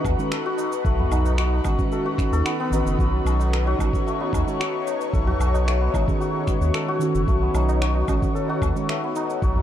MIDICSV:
0, 0, Header, 1, 7, 480
1, 0, Start_track
1, 0, Tempo, 535714
1, 761, Time_signature, 4, 2, 24, 8
1, 8621, End_track
2, 0, Start_track
2, 0, Title_t, "Analog synth pad"
2, 0, Program_c, 0, 89
2, 0, Note_on_c, 0, 63, 76
2, 0, Note_on_c, 0, 71, 72
2, 0, Note_on_c, 0, 78, 77
2, 2667, Note_off_c, 0, 78, 0
2, 2670, Note_on_c, 0, 73, 82
2, 8621, Note_off_c, 0, 63, 0
2, 8621, Note_off_c, 0, 71, 0
2, 8621, Note_off_c, 0, 73, 0
2, 8621, End_track
3, 0, Start_track
3, 0, Title_t, "Santur"
3, 0, Program_c, 1, 15
3, 0, Note_on_c, 1, 57, 77
3, 0, Note_on_c, 1, 59, 76
3, 0, Note_on_c, 1, 63, 71
3, 0, Note_on_c, 1, 66, 86
3, 0, Note_on_c, 1, 69, 77
3, 283, Note_off_c, 1, 69, 0
3, 286, Note_on_c, 1, 69, 84
3, 407, Note_off_c, 1, 66, 0
3, 410, Note_on_c, 1, 66, 99
3, 758, Note_off_c, 1, 57, 0
3, 762, Note_on_c, 1, 57, 78
3, 882, Note_off_c, 1, 59, 0
3, 886, Note_on_c, 1, 59, 77
3, 997, Note_off_c, 1, 63, 0
3, 1000, Note_on_c, 1, 63, 69
3, 1239, Note_off_c, 1, 66, 0
3, 1243, Note_on_c, 1, 66, 77
3, 1719, Note_off_c, 1, 69, 0
3, 1722, Note_on_c, 1, 69, 85
3, 1837, Note_off_c, 1, 66, 0
3, 1841, Note_on_c, 1, 66, 90
3, 2080, Note_off_c, 1, 69, 0
3, 2084, Note_on_c, 1, 69, 109
3, 2195, Note_off_c, 1, 59, 0
3, 2199, Note_on_c, 1, 59, 101
3, 2324, Note_off_c, 1, 59, 0
3, 2328, Note_on_c, 1, 59, 102
3, 2438, Note_off_c, 1, 63, 0
3, 2442, Note_on_c, 1, 63, 70
3, 2682, Note_off_c, 1, 66, 0
3, 2686, Note_on_c, 1, 66, 84
3, 3156, Note_off_c, 1, 69, 0
3, 3160, Note_on_c, 1, 69, 80
3, 3283, Note_off_c, 1, 66, 0
3, 3287, Note_on_c, 1, 66, 99
3, 3640, Note_off_c, 1, 57, 0
3, 3644, Note_on_c, 1, 57, 89
3, 3761, Note_off_c, 1, 59, 0
3, 3765, Note_on_c, 1, 59, 75
3, 3872, Note_off_c, 1, 63, 0
3, 3875, Note_on_c, 1, 63, 72
3, 4113, Note_off_c, 1, 66, 0
3, 4117, Note_on_c, 1, 66, 81
3, 4595, Note_off_c, 1, 69, 0
3, 4599, Note_on_c, 1, 69, 82
3, 4720, Note_off_c, 1, 66, 0
3, 4724, Note_on_c, 1, 66, 102
3, 5077, Note_off_c, 1, 57, 0
3, 5081, Note_on_c, 1, 57, 82
3, 5202, Note_off_c, 1, 59, 0
3, 5205, Note_on_c, 1, 59, 76
3, 5318, Note_off_c, 1, 63, 0
3, 5322, Note_on_c, 1, 63, 79
3, 5556, Note_off_c, 1, 66, 0
3, 5559, Note_on_c, 1, 66, 87
3, 6037, Note_off_c, 1, 69, 0
3, 6040, Note_on_c, 1, 69, 85
3, 6164, Note_off_c, 1, 66, 0
3, 6167, Note_on_c, 1, 66, 98
3, 6520, Note_off_c, 1, 57, 0
3, 6524, Note_on_c, 1, 57, 81
3, 6643, Note_off_c, 1, 59, 0
3, 6647, Note_on_c, 1, 59, 84
3, 6759, Note_off_c, 1, 63, 0
3, 6763, Note_on_c, 1, 63, 70
3, 6998, Note_off_c, 1, 66, 0
3, 7002, Note_on_c, 1, 66, 83
3, 7476, Note_off_c, 1, 69, 0
3, 7480, Note_on_c, 1, 69, 90
3, 7607, Note_off_c, 1, 66, 0
3, 7610, Note_on_c, 1, 66, 97
3, 7964, Note_off_c, 1, 57, 0
3, 7968, Note_on_c, 1, 57, 81
3, 8094, Note_off_c, 1, 59, 0
3, 8098, Note_on_c, 1, 59, 78
3, 8201, Note_off_c, 1, 63, 0
3, 8204, Note_on_c, 1, 63, 81
3, 8443, Note_off_c, 1, 66, 0
3, 8446, Note_on_c, 1, 66, 85
3, 8621, Note_off_c, 1, 57, 0
3, 8621, Note_off_c, 1, 59, 0
3, 8621, Note_off_c, 1, 63, 0
3, 8621, Note_off_c, 1, 66, 0
3, 8621, Note_off_c, 1, 69, 0
3, 8621, End_track
4, 0, Start_track
4, 0, Title_t, "Synth keys"
4, 0, Program_c, 2, 88
4, 0, Note_on_c, 2, 51, 84
4, 0, Note_on_c, 2, 61, 78
4, 0, Note_on_c, 2, 66, 92
4, 0, Note_on_c, 2, 68, 77
4, 135, Note_off_c, 2, 51, 0
4, 138, Note_off_c, 2, 68, 0
4, 141, Note_off_c, 2, 61, 0
4, 144, Note_off_c, 2, 66, 0
4, 162, Note_on_c, 2, 51, 78
4, 169, Note_on_c, 2, 56, 73
4, 176, Note_on_c, 2, 61, 70
4, 183, Note_on_c, 2, 69, 87
4, 267, Note_off_c, 2, 51, 0
4, 271, Note_off_c, 2, 56, 0
4, 274, Note_off_c, 2, 61, 0
4, 278, Note_off_c, 2, 69, 0
4, 1468, Note_on_c, 2, 51, 72
4, 1477, Note_on_c, 2, 56, 66
4, 1481, Note_on_c, 2, 61, 65
4, 1488, Note_on_c, 2, 66, 82
4, 1581, Note_off_c, 2, 51, 0
4, 1585, Note_off_c, 2, 56, 0
4, 1587, Note_off_c, 2, 61, 0
4, 1591, Note_off_c, 2, 66, 0
4, 1591, Note_on_c, 2, 51, 96
4, 1597, Note_on_c, 2, 56, 86
4, 1600, Note_on_c, 2, 61, 81
4, 1609, Note_on_c, 2, 66, 107
4, 1926, Note_off_c, 2, 51, 0
4, 1929, Note_off_c, 2, 56, 0
4, 1931, Note_off_c, 2, 61, 0
4, 1935, Note_off_c, 2, 66, 0
4, 1946, Note_on_c, 2, 51, 81
4, 1960, Note_on_c, 2, 61, 82
4, 1965, Note_on_c, 2, 66, 88
4, 2406, Note_off_c, 2, 51, 0
4, 2413, Note_off_c, 2, 61, 0
4, 2416, Note_off_c, 2, 66, 0
4, 2417, Note_on_c, 2, 51, 86
4, 2440, Note_on_c, 2, 61, 83
4, 2453, Note_on_c, 2, 66, 105
4, 3362, Note_off_c, 2, 51, 0
4, 3373, Note_off_c, 2, 61, 0
4, 3379, Note_off_c, 2, 66, 0
4, 3391, Note_on_c, 2, 51, 87
4, 3397, Note_on_c, 2, 56, 83
4, 3401, Note_on_c, 2, 61, 84
4, 3411, Note_on_c, 2, 66, 93
4, 3491, Note_off_c, 2, 51, 0
4, 3494, Note_off_c, 2, 56, 0
4, 3496, Note_off_c, 2, 61, 0
4, 3501, Note_off_c, 2, 66, 0
4, 3518, Note_on_c, 2, 51, 88
4, 3529, Note_on_c, 2, 61, 81
4, 3535, Note_on_c, 2, 66, 100
4, 3972, Note_off_c, 2, 51, 0
4, 3977, Note_off_c, 2, 61, 0
4, 3980, Note_off_c, 2, 66, 0
4, 4000, Note_on_c, 2, 51, 76
4, 4003, Note_on_c, 2, 56, 70
4, 4011, Note_on_c, 2, 61, 66
4, 4016, Note_on_c, 2, 69, 81
4, 4106, Note_off_c, 2, 51, 0
4, 4107, Note_off_c, 2, 56, 0
4, 4112, Note_off_c, 2, 61, 0
4, 4114, Note_off_c, 2, 69, 0
4, 5318, Note_on_c, 2, 51, 74
4, 5322, Note_on_c, 2, 56, 68
4, 5327, Note_on_c, 2, 61, 65
4, 5333, Note_on_c, 2, 66, 85
4, 5426, Note_off_c, 2, 51, 0
4, 5428, Note_off_c, 2, 56, 0
4, 5431, Note_off_c, 2, 61, 0
4, 5434, Note_off_c, 2, 66, 0
4, 5439, Note_on_c, 2, 51, 99
4, 5446, Note_on_c, 2, 68, 89
4, 5453, Note_on_c, 2, 61, 87
4, 5457, Note_on_c, 2, 66, 102
4, 5770, Note_off_c, 2, 51, 0
4, 5773, Note_off_c, 2, 68, 0
4, 5777, Note_off_c, 2, 61, 0
4, 5779, Note_off_c, 2, 66, 0
4, 5796, Note_on_c, 2, 51, 80
4, 5800, Note_on_c, 2, 56, 76
4, 5808, Note_on_c, 2, 61, 77
4, 5811, Note_on_c, 2, 66, 92
4, 6251, Note_off_c, 2, 51, 0
4, 6253, Note_off_c, 2, 56, 0
4, 6257, Note_off_c, 2, 61, 0
4, 6258, Note_off_c, 2, 66, 0
4, 6263, Note_on_c, 2, 51, 97
4, 6287, Note_on_c, 2, 61, 80
4, 6298, Note_on_c, 2, 66, 106
4, 7205, Note_off_c, 2, 51, 0
4, 7216, Note_off_c, 2, 61, 0
4, 7222, Note_off_c, 2, 66, 0
4, 7235, Note_on_c, 2, 51, 90
4, 7241, Note_on_c, 2, 56, 84
4, 7246, Note_on_c, 2, 61, 89
4, 7253, Note_on_c, 2, 66, 105
4, 7333, Note_off_c, 2, 51, 0
4, 7336, Note_off_c, 2, 56, 0
4, 7339, Note_off_c, 2, 61, 0
4, 7342, Note_off_c, 2, 66, 0
4, 7360, Note_on_c, 2, 51, 90
4, 7374, Note_on_c, 2, 61, 84
4, 7378, Note_on_c, 2, 66, 93
4, 7813, Note_off_c, 2, 51, 0
4, 7820, Note_off_c, 2, 61, 0
4, 7822, Note_off_c, 2, 66, 0
4, 7839, Note_on_c, 2, 51, 80
4, 7846, Note_on_c, 2, 56, 70
4, 7851, Note_on_c, 2, 61, 69
4, 7857, Note_on_c, 2, 69, 86
4, 7946, Note_off_c, 2, 51, 0
4, 7949, Note_off_c, 2, 56, 0
4, 7952, Note_off_c, 2, 61, 0
4, 7955, Note_off_c, 2, 69, 0
4, 8621, End_track
5, 0, Start_track
5, 0, Title_t, "Analog synth bass"
5, 0, Program_c, 3, 38
5, 42, Note_on_c, 3, 39, 86
5, 138, Note_off_c, 3, 39, 0
5, 759, Note_on_c, 3, 35, 106
5, 947, Note_off_c, 3, 35, 0
5, 998, Note_on_c, 3, 35, 105
5, 1437, Note_off_c, 3, 35, 0
5, 1476, Note_on_c, 3, 33, 82
5, 1575, Note_off_c, 3, 33, 0
5, 2080, Note_on_c, 3, 39, 95
5, 2172, Note_off_c, 3, 39, 0
5, 2432, Note_on_c, 3, 33, 83
5, 2533, Note_off_c, 3, 33, 0
5, 2560, Note_on_c, 3, 30, 86
5, 2652, Note_off_c, 3, 30, 0
5, 2677, Note_on_c, 3, 35, 103
5, 2867, Note_off_c, 3, 35, 0
5, 2913, Note_on_c, 3, 35, 108
5, 3355, Note_off_c, 3, 35, 0
5, 3396, Note_on_c, 3, 33, 82
5, 3495, Note_off_c, 3, 33, 0
5, 3879, Note_on_c, 3, 39, 89
5, 3977, Note_off_c, 3, 39, 0
5, 4600, Note_on_c, 3, 35, 106
5, 4788, Note_off_c, 3, 35, 0
5, 4837, Note_on_c, 3, 35, 108
5, 5277, Note_off_c, 3, 35, 0
5, 5321, Note_on_c, 3, 33, 83
5, 5418, Note_off_c, 3, 33, 0
5, 5921, Note_on_c, 3, 39, 97
5, 6012, Note_off_c, 3, 39, 0
5, 6405, Note_on_c, 3, 30, 97
5, 6494, Note_off_c, 3, 30, 0
5, 6522, Note_on_c, 3, 35, 107
5, 6709, Note_off_c, 3, 35, 0
5, 6759, Note_on_c, 3, 35, 102
5, 7198, Note_off_c, 3, 35, 0
5, 7241, Note_on_c, 3, 33, 87
5, 7338, Note_off_c, 3, 33, 0
5, 7720, Note_on_c, 3, 39, 82
5, 7817, Note_off_c, 3, 39, 0
5, 8442, Note_on_c, 3, 35, 99
5, 8621, Note_off_c, 3, 35, 0
5, 8621, End_track
6, 0, Start_track
6, 0, Title_t, "Tabla"
6, 518, Note_on_c, 9, 60, 85
6, 608, Note_off_c, 9, 60, 0
6, 895, Note_on_c, 9, 64, 87
6, 984, Note_off_c, 9, 64, 0
6, 1128, Note_on_c, 9, 60, 86
6, 1128, Note_on_c, 9, 63, 45
6, 1218, Note_off_c, 9, 60, 0
6, 1218, Note_off_c, 9, 63, 0
6, 1374, Note_on_c, 9, 60, 58
6, 1464, Note_off_c, 9, 60, 0
6, 1479, Note_on_c, 9, 60, 79
6, 1481, Note_on_c, 9, 63, 60
6, 1569, Note_off_c, 9, 60, 0
6, 1571, Note_off_c, 9, 63, 0
6, 3038, Note_on_c, 9, 63, 51
6, 3042, Note_on_c, 9, 60, 76
6, 3128, Note_off_c, 9, 63, 0
6, 3132, Note_off_c, 9, 60, 0
6, 3280, Note_on_c, 9, 60, 57
6, 3370, Note_off_c, 9, 60, 0
6, 3396, Note_on_c, 9, 63, 59
6, 3403, Note_on_c, 9, 60, 69
6, 3485, Note_off_c, 9, 63, 0
6, 3492, Note_off_c, 9, 60, 0
6, 3773, Note_on_c, 9, 60, 66
6, 3862, Note_off_c, 9, 60, 0
6, 4366, Note_on_c, 9, 60, 81
6, 4456, Note_off_c, 9, 60, 0
6, 4725, Note_on_c, 9, 64, 74
6, 4814, Note_off_c, 9, 64, 0
6, 4965, Note_on_c, 9, 63, 57
6, 4967, Note_on_c, 9, 60, 75
6, 5055, Note_off_c, 9, 63, 0
6, 5056, Note_off_c, 9, 60, 0
6, 5208, Note_on_c, 9, 60, 59
6, 5298, Note_off_c, 9, 60, 0
6, 5319, Note_on_c, 9, 63, 67
6, 5321, Note_on_c, 9, 60, 66
6, 5408, Note_off_c, 9, 63, 0
6, 5410, Note_off_c, 9, 60, 0
6, 6889, Note_on_c, 9, 63, 53
6, 6890, Note_on_c, 9, 60, 77
6, 6978, Note_off_c, 9, 63, 0
6, 6980, Note_off_c, 9, 60, 0
6, 7123, Note_on_c, 9, 60, 64
6, 7213, Note_off_c, 9, 60, 0
6, 7236, Note_on_c, 9, 63, 64
6, 7250, Note_on_c, 9, 60, 79
6, 7325, Note_off_c, 9, 63, 0
6, 7340, Note_off_c, 9, 60, 0
6, 7600, Note_on_c, 9, 60, 59
6, 7689, Note_off_c, 9, 60, 0
6, 8209, Note_on_c, 9, 60, 76
6, 8299, Note_off_c, 9, 60, 0
6, 8564, Note_on_c, 9, 64, 84
6, 8621, Note_off_c, 9, 64, 0
6, 8621, End_track
7, 0, Start_track
7, 0, Title_t, "Drums"
7, 42, Note_on_c, 9, 36, 115
7, 46, Note_on_c, 9, 77, 81
7, 47, Note_on_c, 9, 69, 85
7, 131, Note_off_c, 9, 36, 0
7, 136, Note_off_c, 9, 77, 0
7, 137, Note_off_c, 9, 69, 0
7, 174, Note_on_c, 9, 69, 46
7, 263, Note_off_c, 9, 69, 0
7, 284, Note_on_c, 9, 26, 97
7, 286, Note_on_c, 9, 69, 36
7, 374, Note_off_c, 9, 26, 0
7, 375, Note_off_c, 9, 69, 0
7, 523, Note_on_c, 9, 69, 78
7, 613, Note_off_c, 9, 69, 0
7, 647, Note_on_c, 9, 69, 50
7, 737, Note_off_c, 9, 69, 0
7, 759, Note_on_c, 9, 36, 127
7, 764, Note_on_c, 9, 69, 36
7, 849, Note_off_c, 9, 36, 0
7, 854, Note_off_c, 9, 69, 0
7, 1001, Note_on_c, 9, 77, 59
7, 1002, Note_on_c, 9, 69, 79
7, 1090, Note_off_c, 9, 77, 0
7, 1091, Note_off_c, 9, 69, 0
7, 1125, Note_on_c, 9, 69, 46
7, 1215, Note_off_c, 9, 69, 0
7, 1238, Note_on_c, 9, 26, 96
7, 1239, Note_on_c, 9, 69, 36
7, 1327, Note_off_c, 9, 26, 0
7, 1328, Note_off_c, 9, 69, 0
7, 1474, Note_on_c, 9, 77, 77
7, 1476, Note_on_c, 9, 36, 63
7, 1476, Note_on_c, 9, 69, 80
7, 1564, Note_off_c, 9, 77, 0
7, 1565, Note_off_c, 9, 69, 0
7, 1566, Note_off_c, 9, 36, 0
7, 1601, Note_on_c, 9, 36, 109
7, 1603, Note_on_c, 9, 69, 40
7, 1690, Note_off_c, 9, 36, 0
7, 1693, Note_off_c, 9, 69, 0
7, 1718, Note_on_c, 9, 69, 35
7, 1808, Note_off_c, 9, 69, 0
7, 1956, Note_on_c, 9, 36, 112
7, 1961, Note_on_c, 9, 26, 31
7, 1962, Note_on_c, 9, 69, 77
7, 2046, Note_off_c, 9, 36, 0
7, 2050, Note_off_c, 9, 26, 0
7, 2052, Note_off_c, 9, 69, 0
7, 2089, Note_on_c, 9, 69, 45
7, 2178, Note_off_c, 9, 69, 0
7, 2202, Note_on_c, 9, 26, 102
7, 2203, Note_on_c, 9, 69, 34
7, 2291, Note_off_c, 9, 26, 0
7, 2293, Note_off_c, 9, 69, 0
7, 2444, Note_on_c, 9, 69, 80
7, 2534, Note_off_c, 9, 69, 0
7, 2570, Note_on_c, 9, 69, 48
7, 2660, Note_off_c, 9, 69, 0
7, 2676, Note_on_c, 9, 36, 123
7, 2687, Note_on_c, 9, 69, 36
7, 2766, Note_off_c, 9, 36, 0
7, 2776, Note_off_c, 9, 69, 0
7, 2926, Note_on_c, 9, 77, 59
7, 2928, Note_on_c, 9, 69, 74
7, 3016, Note_off_c, 9, 77, 0
7, 3017, Note_off_c, 9, 69, 0
7, 3052, Note_on_c, 9, 69, 45
7, 3142, Note_off_c, 9, 69, 0
7, 3166, Note_on_c, 9, 26, 93
7, 3168, Note_on_c, 9, 69, 36
7, 3256, Note_off_c, 9, 26, 0
7, 3257, Note_off_c, 9, 69, 0
7, 3397, Note_on_c, 9, 36, 61
7, 3407, Note_on_c, 9, 77, 74
7, 3408, Note_on_c, 9, 69, 76
7, 3487, Note_off_c, 9, 36, 0
7, 3496, Note_off_c, 9, 77, 0
7, 3498, Note_off_c, 9, 69, 0
7, 3524, Note_on_c, 9, 36, 109
7, 3535, Note_on_c, 9, 69, 42
7, 3613, Note_off_c, 9, 36, 0
7, 3624, Note_off_c, 9, 69, 0
7, 3652, Note_on_c, 9, 69, 34
7, 3742, Note_off_c, 9, 69, 0
7, 3879, Note_on_c, 9, 36, 108
7, 3891, Note_on_c, 9, 77, 75
7, 3892, Note_on_c, 9, 69, 84
7, 3969, Note_off_c, 9, 36, 0
7, 3981, Note_off_c, 9, 77, 0
7, 3982, Note_off_c, 9, 69, 0
7, 4014, Note_on_c, 9, 69, 43
7, 4104, Note_off_c, 9, 69, 0
7, 4129, Note_on_c, 9, 26, 95
7, 4130, Note_on_c, 9, 69, 32
7, 4219, Note_off_c, 9, 26, 0
7, 4220, Note_off_c, 9, 69, 0
7, 4366, Note_on_c, 9, 69, 73
7, 4455, Note_off_c, 9, 69, 0
7, 4490, Note_on_c, 9, 69, 46
7, 4580, Note_off_c, 9, 69, 0
7, 4601, Note_on_c, 9, 36, 118
7, 4606, Note_on_c, 9, 69, 33
7, 4691, Note_off_c, 9, 36, 0
7, 4696, Note_off_c, 9, 69, 0
7, 4844, Note_on_c, 9, 77, 63
7, 4845, Note_on_c, 9, 69, 74
7, 4934, Note_off_c, 9, 77, 0
7, 4935, Note_off_c, 9, 69, 0
7, 4972, Note_on_c, 9, 69, 46
7, 5061, Note_off_c, 9, 69, 0
7, 5089, Note_on_c, 9, 26, 95
7, 5090, Note_on_c, 9, 69, 34
7, 5178, Note_off_c, 9, 26, 0
7, 5180, Note_off_c, 9, 69, 0
7, 5321, Note_on_c, 9, 36, 62
7, 5327, Note_on_c, 9, 77, 77
7, 5328, Note_on_c, 9, 69, 75
7, 5410, Note_off_c, 9, 36, 0
7, 5417, Note_off_c, 9, 77, 0
7, 5418, Note_off_c, 9, 69, 0
7, 5447, Note_on_c, 9, 36, 104
7, 5453, Note_on_c, 9, 69, 38
7, 5537, Note_off_c, 9, 36, 0
7, 5542, Note_off_c, 9, 69, 0
7, 5567, Note_on_c, 9, 69, 36
7, 5657, Note_off_c, 9, 69, 0
7, 5801, Note_on_c, 9, 36, 104
7, 5802, Note_on_c, 9, 26, 30
7, 5803, Note_on_c, 9, 69, 74
7, 5890, Note_off_c, 9, 36, 0
7, 5892, Note_off_c, 9, 26, 0
7, 5893, Note_off_c, 9, 69, 0
7, 5929, Note_on_c, 9, 69, 42
7, 6018, Note_off_c, 9, 69, 0
7, 6041, Note_on_c, 9, 26, 92
7, 6042, Note_on_c, 9, 69, 33
7, 6131, Note_off_c, 9, 26, 0
7, 6132, Note_off_c, 9, 69, 0
7, 6280, Note_on_c, 9, 69, 76
7, 6370, Note_off_c, 9, 69, 0
7, 6406, Note_on_c, 9, 69, 47
7, 6496, Note_off_c, 9, 69, 0
7, 6521, Note_on_c, 9, 36, 117
7, 6522, Note_on_c, 9, 69, 33
7, 6610, Note_off_c, 9, 36, 0
7, 6612, Note_off_c, 9, 69, 0
7, 6761, Note_on_c, 9, 77, 61
7, 6762, Note_on_c, 9, 69, 72
7, 6851, Note_off_c, 9, 77, 0
7, 6852, Note_off_c, 9, 69, 0
7, 6890, Note_on_c, 9, 69, 44
7, 6979, Note_off_c, 9, 69, 0
7, 7005, Note_on_c, 9, 26, 104
7, 7006, Note_on_c, 9, 69, 33
7, 7095, Note_off_c, 9, 26, 0
7, 7096, Note_off_c, 9, 69, 0
7, 7241, Note_on_c, 9, 77, 78
7, 7242, Note_on_c, 9, 36, 58
7, 7242, Note_on_c, 9, 69, 79
7, 7331, Note_off_c, 9, 36, 0
7, 7331, Note_off_c, 9, 77, 0
7, 7332, Note_off_c, 9, 69, 0
7, 7367, Note_on_c, 9, 36, 102
7, 7372, Note_on_c, 9, 69, 39
7, 7457, Note_off_c, 9, 36, 0
7, 7461, Note_off_c, 9, 69, 0
7, 7491, Note_on_c, 9, 69, 32
7, 7581, Note_off_c, 9, 69, 0
7, 7722, Note_on_c, 9, 36, 108
7, 7726, Note_on_c, 9, 77, 87
7, 7727, Note_on_c, 9, 69, 71
7, 7812, Note_off_c, 9, 36, 0
7, 7816, Note_off_c, 9, 77, 0
7, 7817, Note_off_c, 9, 69, 0
7, 7852, Note_on_c, 9, 69, 41
7, 7942, Note_off_c, 9, 69, 0
7, 7967, Note_on_c, 9, 26, 95
7, 7968, Note_on_c, 9, 69, 32
7, 8056, Note_off_c, 9, 26, 0
7, 8058, Note_off_c, 9, 69, 0
7, 8205, Note_on_c, 9, 69, 72
7, 8295, Note_off_c, 9, 69, 0
7, 8333, Note_on_c, 9, 69, 45
7, 8423, Note_off_c, 9, 69, 0
7, 8442, Note_on_c, 9, 36, 120
7, 8446, Note_on_c, 9, 69, 35
7, 8532, Note_off_c, 9, 36, 0
7, 8536, Note_off_c, 9, 69, 0
7, 8621, End_track
0, 0, End_of_file